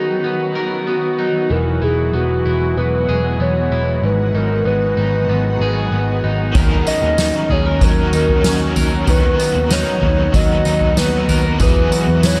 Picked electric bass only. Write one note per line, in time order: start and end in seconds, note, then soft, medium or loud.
1.50 1.78 E1 medium
1.82 2.10 E1 medium
2.14 2.41 E1 medium
2.45 2.73 E1 medium
2.77 3.04 E1 medium
3.09 3.36 E1 medium
3.39 3.67 E1 medium
3.71 3.99 E1 medium
4.02 4.30 G#1 loud
4.34 4.62 G#1 medium
4.65 4.93 G#1 medium
4.97 5.25 G#1 medium
5.28 5.56 G#1 medium
5.60 5.88 G#1 medium
5.91 6.20 G#1 medium
6.24 6.52 G#1 medium
6.55 6.83 D#2 loud
7.03 7.30 D#2 medium
7.50 7.78 D#2 loud
7.82 8.09 D#2 loud
8.12 8.41 D#2 medium
8.44 8.72 D#2 medium
8.76 9.04 D#2 medium
9.08 9.35 D#2 loud
9.55 9.83 D#2 loud
10.02 10.30 D#2 medium
10.34 10.62 D#2 loud
10.66 10.93 D#2 loud
10.97 11.25 D#2 medium
11.28 11.56 D#2 medium
11.60 11.88 E2 loud
12.08 12.36 E2 medium